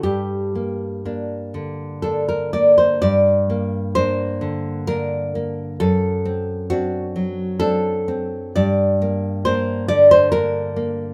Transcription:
\new Staff \with { instrumentName = "Nylon-string guitar" } { \time 3/4 \key g \minor \tempo 4 = 65 << { g'2 a'16 bes'16 d''16 c''16 | d''4 c''4 bes'4 | a'4 fis'4 a'4 | d''4 c''8 d''16 c''16 bes'4 | } \\ { g,8 bes8 <bes d'>8 d8 <bes d'>8 bes8 | g,8 bes8 <bes d'>8 d8 <bes d'>8 bes8 | fis,8 c'8 <c' d'>8 fis8 <c' d'>8 c'8 | g,8 bes8 <bes d'>8 d8 <bes d'>8 bes8 | } >> }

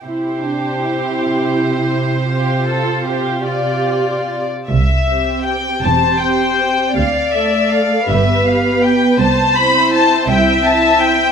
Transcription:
<<
  \new Staff \with { instrumentName = "Violin section" } { \time 6/8 \key c \major \tempo 4. = 54 c''2.~ | c''4. d''4~ d''16 r16 | e''4 g''8 a''8 g''4 | f''8 e''8 f''8 e''8 f''8 g''8 |
a''8 b''8 a''8 g''8 a''8 g''8 | }
  \new Staff \with { instrumentName = "Violin section" } { \time 6/8 \key c \major g'2. | g'8 a'8 g'8 f'4~ f'16 r16 | r4. c''4. | d''4. b'4. |
c''4. e''4. | }
  \new Staff \with { instrumentName = "Viola section" } { \time 6/8 \key c \major e'8 d'8 e'2 | f'4. g'4~ g'16 r16 | r8 <c' g'>4 <c' g'>8 <c' g'>4 | r8 <a a'>4 <b g'>8 <b g'>4 |
r8 <c' e'>4. <c' e'>4 | }
  \new Staff \with { instrumentName = "Cello section" } { \clef bass \time 6/8 \key c \major c2.~ | c2~ c8. r16 | c,4. e,4. | d,4. g,4. |
c,4. c,4. | }
  \new Staff \with { instrumentName = "Double bass section" } { \clef bass \time 6/8 \key c \major r2. | r2. | c,4. e,,4. | d,4. g,,4. |
c,4. c,4. | }
>>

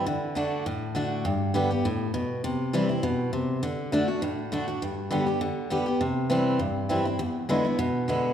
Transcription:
\new Staff \with { instrumentName = "Steel-string acoustic guitar" } { \time 4/4 \key g \major \tempo 4 = 202 << { r4 <d a d' fis'>4 r4 <d a d' fis'>4 | r4 <d g b g'>8 <b g'>8 r2 | r4 <e g c' e'>8 <c' e'>8 r2 | r4 <d a d' fis'>8 <d' fis'>8 r4 <d a d' fis'>8 <d' fis'>8 |
r4 <d g b g'>8 <b g'>8 r4 <d g b g'>8 <b g'>8 | r4 <e g c' e'>4 r4 <e g c' e'>8 <c' e'>8 | r4 <d gis b e'>8 <b e'>8 r4 <d gis b e'>4 | } \\ { d2 a,2 | g,2 a,4 b,4 | c2 b,4 c4 | d2 a,2 |
g,2 d2 | c2 g,2 | e,2 b,2 | } >> }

